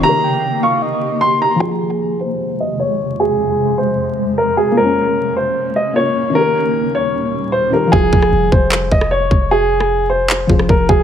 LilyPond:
<<
  \new Staff \with { instrumentName = "Soft synth lead" } { \time 4/4 \key f \minor \tempo 4 = 152 r8 g''4 f''8 ees''4 r4 | r1 | r1 | r1 |
r1 | r1 | r1 | }
  \new Staff \with { instrumentName = "Grand piano" } { \time 4/4 \key f \minor bes''4. des'''4. c'''8 bes''8 | aes'4. c''4 ees''8 des''4 | aes'4. c''4. bes'8 aes'8 | bes'4. c''4 ees''8 des''4 |
bes'4. des''4. c''8 bes'8 | aes'4. c''4 ees''8 des''4 | aes'4. c''4. bes'8 aes'8 | }
  \new Staff \with { instrumentName = "Felt piano" } { \time 4/4 \key f \minor <ees ees' g' bes'>1 | <f f' aes'>1~ | <f f' aes'>1 | <bes des' f' c''>2. <bes f' bes' des''>4 |
<ees ees' g' bes'>2.~ <ees ees' g' bes'>8 <ees ees' g' bes'>8 | <f f' aes'>1~ | <f f' aes'>2~ <f f' aes'>8 <f f' aes' c''>4. | }
  \new Staff \with { instrumentName = "Ambient pad" } { \clef bass \time 4/4 \key f \minor <ees bes g'>1 | <f, c aes>1~ | <f, c aes>1 | <des bes des'>1 |
<ees, bes, g>1 | r1 | r1 | }
  \new Staff \with { instrumentName = "808-style bass" } { \clef bass \time 4/4 \key f \minor r1 | r1 | r1 | r1 |
r1 | f,,8 f,,8 f,,8 f,,4 f,,4 f,,8~ | f,,2~ f,,8 f,,8 f,,8 f,,8 | }
  \new DrumStaff \with { instrumentName = "Drums" } \drummode { \time 4/4 r4 r4 r4 r4 | r4 r4 r4 r4 | r4 r4 r4 r4 | r4 r4 r4 r4 |
r4 r4 r4 r4 | bd8 bd16 ss16 r8 bd8 hc8 bd16 ss16 r8 bd8 | r8. ss16 r4 hc8 bd16 ss16 bd8 bd8 | }
>>